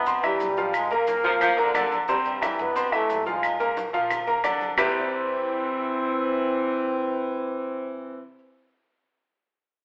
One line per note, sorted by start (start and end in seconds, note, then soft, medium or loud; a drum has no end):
0.00 0.37 G2 medium
0.00 0.22 B2 medium
0.00 0.22 B3 loud
0.06 0.21 C4 medium
0.06 0.21 C5 medium
0.06 0.21 C6 medium
0.06 high conga soft
0.06 low agogo medium
0.06 maracas medium
0.23 0.71 G2 medium
0.23 0.51 E3 medium
0.23 0.71 G3 loud
0.23 0.51 E4 medium
0.23 0.51 E5 medium
0.23 high conga soft
0.23 low agogo loud
0.23 claves medium
0.23 maracas soft
0.40 1.19 A#1 medium
0.40 high conga medium
0.40 low timbale medium
0.40 maracas medium
0.57 0.85 F3 medium
0.57 0.85 F4 medium
0.57 0.85 F5 medium
0.57 high conga medium
0.57 maracas soft
0.74 0.91 G#2 medium
0.74 0.91 G#3 loud
0.74 high conga soft
0.74 low agogo loud
0.74 claves medium
0.74 maracas medium
0.90 1.92 A#2 medium
0.90 1.19 A#3 medium
0.90 1.92 A#3 loud
0.90 1.19 A#4 medium
0.90 1.19 A#5 medium
0.90 high conga soft
0.90 low agogo medium
0.90 maracas soft
1.07 high conga loud
1.07 maracas medium
1.24 1.56 F2 medium
1.24 1.52 F3 medium
1.24 1.32 F3 loud
1.24 1.52 F4 medium
1.24 1.52 F5 medium
1.24 high conga soft
1.24 low agogo medium
1.24 maracas soft
1.41 1.57 F3 loud
1.41 high conga soft
1.41 low conga medium
1.41 low agogo loud
1.41 claves medium
1.41 maracas medium
1.57 1.73 D2 medium
1.57 1.73 D3 loud
1.57 1.71 A#3 medium
1.57 1.71 A#4 medium
1.57 1.72 A#5 medium
1.57 high conga soft
1.57 low conga medium
1.57 maracas soft
1.74 2.53 C2 loud
1.74 2.02 D3 medium
1.74 1.98 D3 medium
1.74 2.02 D4 medium
1.74 2.02 D5 medium
1.74 high conga medium
1.74 low timbale medium
1.74 low agogo loud
1.74 claves medium
1.74 maracas medium
1.92 high conga medium
1.92 low agogo medium
1.92 maracas soft
2.08 2.17 G2 medium
2.08 2.36 C3 medium
2.08 2.16 G3 medium
2.08 2.36 C4 medium
2.08 2.36 C5 medium
2.08 high conga soft
2.08 maracas medium
2.25 2.57 G2 medium
2.25 2.57 G3 medium
2.25 high conga soft
2.25 low agogo medium
2.25 maracas soft
2.42 2.69 E3 medium
2.42 2.70 E4 medium
2.42 2.70 E5 medium
2.42 high conga loud
2.42 low agogo loud
2.42 claves medium
2.42 maracas medium
2.58 3.06 G2 loud
2.58 2.93 B2 medium
2.58 2.93 B3 loud
2.58 high conga soft
2.58 maracas soft
2.75 2.89 C4 medium
2.75 2.90 C5 medium
2.75 2.90 C6 medium
2.75 high conga soft
2.75 low agogo medium
2.75 maracas medium
2.92 3.27 A2 medium
2.92 3.20 E3 medium
2.92 3.27 A3 loud
2.92 3.20 E4 medium
2.92 3.20 E5 medium
2.92 high conga soft
2.92 low agogo loud
2.92 claves medium
2.92 maracas soft
3.10 3.88 A#1 loud
3.10 high conga medium
3.10 low timbale medium
3.10 maracas medium
3.26 3.74 G#2 medium
3.26 3.54 F3 medium
3.26 3.74 G#3 medium
3.26 3.54 F4 medium
3.26 3.54 F5 medium
3.26 high conga medium
3.26 maracas soft
3.43 high conga soft
3.43 low agogo loud
3.43 claves medium
3.43 maracas medium
3.60 3.87 A#3 medium
3.60 3.88 A#4 medium
3.60 3.88 A#5 medium
3.60 high conga soft
3.60 low agogo medium
3.60 maracas soft
3.77 high conga loud
3.77 maracas medium
3.93 4.41 A#2 loud
3.93 4.21 F3 medium
3.93 4.21 F4 medium
3.93 4.21 F5 medium
3.93 high conga soft
3.93 low agogo medium
3.93 maracas soft
4.10 high conga soft
4.10 low conga medium
4.10 low agogo loud
4.10 claves medium
4.10 maracas medium
4.27 4.41 A#3 medium
4.27 4.41 A#4 medium
4.27 4.41 A#5 medium
4.27 high conga soft
4.27 low conga medium
4.27 maracas soft
4.44 4.74 C2 medium
4.44 4.71 D3 medium
4.44 4.72 D4 medium
4.44 4.72 D5 medium
4.44 high conga medium
4.44 low agogo loud
4.44 claves medium
4.44 maracas medium
4.60 high conga medium
4.60 low agogo medium
4.60 maracas soft
4.77 8.35 C2 loud
4.77 8.35 C3 loud
4.77 8.23 E3 medium
4.77 8.35 G3 medium
4.77 8.23 C4 medium
4.77 8.35 C4 medium
4.77 8.35 E4 medium
4.77 8.36 G4 loud
4.77 8.35 B4 medium
4.77 low conga loud
4.77 low timbale loud
4.77 claves loud
4.77 maracas loud